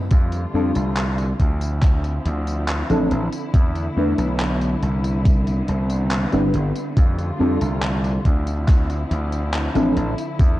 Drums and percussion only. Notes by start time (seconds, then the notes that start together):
0.11 kick, closed hi-hat, tambourine
0.32 closed hi-hat, tambourine
0.75 closed hi-hat, tambourine
0.97 clap, closed hi-hat, tambourine
1.18 closed hi-hat, tambourine
1.40 kick, closed hi-hat
1.61 closed hi-hat, tambourine
1.82 kick, clap, closed hi-hat, tambourine
2.04 closed hi-hat, tambourine
2.25 closed hi-hat
2.47 closed hi-hat, tambourine
2.68 clap, closed hi-hat, tambourine
2.90 closed hi-hat, tambourine
3.11 closed hi-hat
3.33 closed hi-hat, tambourine
3.54 kick, closed hi-hat, tambourine
3.76 closed hi-hat, tambourine
4.18 closed hi-hat, tambourine
4.40 clap, closed hi-hat, tambourine
4.61 closed hi-hat, tambourine
4.83 closed hi-hat
5.04 closed hi-hat, tambourine
5.25 kick, closed hi-hat, tambourine
5.47 closed hi-hat, tambourine
5.68 closed hi-hat
5.90 closed hi-hat, tambourine
6.11 clap, closed hi-hat, tambourine
6.32 closed hi-hat, tambourine
6.54 closed hi-hat
6.76 closed hi-hat, tambourine
6.97 kick, closed hi-hat, tambourine
7.19 closed hi-hat, tambourine
7.61 closed hi-hat, tambourine
7.83 clap, closed hi-hat, tambourine
8.04 closed hi-hat, tambourine
8.25 kick, closed hi-hat
8.47 closed hi-hat, tambourine
8.68 kick, clap, closed hi-hat, tambourine
8.90 closed hi-hat, tambourine
9.11 closed hi-hat
9.32 closed hi-hat, tambourine
9.54 clap, closed hi-hat, tambourine
9.75 closed hi-hat, tambourine
9.97 closed hi-hat
10.18 closed hi-hat, tambourine
10.39 kick, closed hi-hat, tambourine